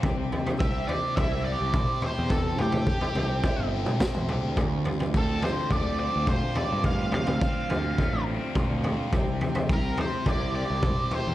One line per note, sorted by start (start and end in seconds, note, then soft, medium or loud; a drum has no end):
0.00 0.28 C2 medium
0.00 0.61 C4 medium
0.00 9.09 C4 medium
0.00 kick loud
0.00 floor tom medium
0.04 1.46 C3 medium
0.04 4.55 E4 medium
0.04 2.29 G4 medium
0.32 floor tom medium
0.46 floor tom medium
0.59 0.85 C2 medium
0.59 1.45 G4 medium
0.59 0.87 E5 loud
0.59 kick loud
0.88 3.16 C4 medium
0.88 1.16 D5 loud
0.88 floor tom medium
1.16 1.54 C2 medium
1.16 2.60 E4 medium
1.16 1.43 E5 loud
1.16 kick medium
1.16 floor tom medium
1.45 2.02 G4 medium
1.45 2.04 D5 loud
1.61 1.85 C2 medium
1.74 4.01 C5 medium
1.74 kick loud
1.74 mid tom medium
2.02 2.88 G4 medium
2.02 2.31 C5 medium
2.02 floor tom medium
2.19 2.61 E2 medium
2.30 3.73 C3 medium
2.30 2.60 A4 medium
2.30 4.56 A4 medium
2.30 kick loud
2.30 floor tom medium
2.58 2.85 A2 medium
2.58 3.68 G4 medium
2.58 floor tom medium
2.72 floor tom medium
2.87 3.73 G4 medium
2.87 kick loud
3.01 floor tom medium
3.15 3.41 C2 medium
3.15 4.61 C4 medium
3.15 floor tom medium
3.44 4.58 E4 medium
3.44 kick loud
3.44 floor tom medium
3.59 3.83 G1 medium
3.74 4.29 G4 medium
3.86 mid tom medium
4.00 4.61 C5 medium
4.00 kick loud
4.00 snare medium
4.00 mid tom medium
4.14 4.29 E2 medium
4.14 mid tom medium
4.29 4.43 C2 medium
4.29 4.58 G4 medium
4.29 floor tom medium
4.44 4.57 D2 medium
4.57 4.82 D2 loud
4.57 6.00 D2 medium
4.57 9.08 D4 medium
4.57 9.08 F4 medium
4.57 kick loud
4.57 floor tom medium
4.85 floor tom medium
5.00 floor tom medium
5.14 5.39 D2 medium
5.14 6.00 C4 medium
5.14 5.43 A4 medium
5.14 kick loud
5.42 6.85 D3 medium
5.42 5.71 C5 medium
5.42 floor tom medium
5.71 6.08 D2 medium
5.71 7.14 A3 medium
5.71 5.98 D5 medium
5.71 kick medium
5.71 floor tom medium
6.00 6.56 C4 medium
6.00 6.26 D5 medium
6.16 6.40 D2 medium
6.27 7.70 F4 medium
6.27 6.58 C5 medium
6.27 kick loud
6.27 mid tom medium
6.55 7.41 C4 medium
6.55 6.85 D5 medium
6.55 floor tom medium
6.72 7.14 G2 medium
6.84 8.26 D2 medium
6.84 7.12 F5 loud
6.84 kick medium
6.84 floor tom medium
7.12 7.38 C3 medium
7.12 8.24 F5 medium
7.12 floor tom medium
7.27 floor tom medium
7.41 8.26 C4 medium
7.41 kick loud
7.70 7.95 D2 medium
7.70 9.12 D3 medium
7.70 floor tom medium
7.98 9.12 A3 medium
7.98 kick medium
7.98 floor tom medium
8.13 8.38 A1 medium
8.27 8.85 C4 medium
8.55 9.13 F4 medium
8.55 kick loud
8.55 mid tom medium
8.70 8.94 D2 medium
8.84 9.69 C4 medium
8.84 floor tom medium
9.12 9.37 C2 medium
9.12 10.55 C3 medium
9.12 11.35 C4 medium
9.12 11.35 E4 medium
9.12 11.35 G4 medium
9.12 kick loud
9.12 floor tom medium
9.41 floor tom medium
9.55 floor tom medium
9.69 9.94 C2 medium
9.69 10.54 G4 medium
9.69 9.98 A#4 medium
9.69 kick loud
9.98 11.35 C4 medium
9.98 10.28 C5 medium
9.98 floor tom medium
10.26 10.63 C2 medium
10.26 11.35 E4 medium
10.26 10.54 D5 loud
10.26 kick medium
10.26 floor tom medium
10.55 11.10 G4 medium
10.55 11.13 D5 loud
10.70 10.94 C2 medium
10.83 11.35 C5 medium
10.83 kick loud
10.83 mid tom medium
11.11 11.35 G4 medium
11.11 11.35 C5 medium
11.11 floor tom medium
11.27 11.35 E2 medium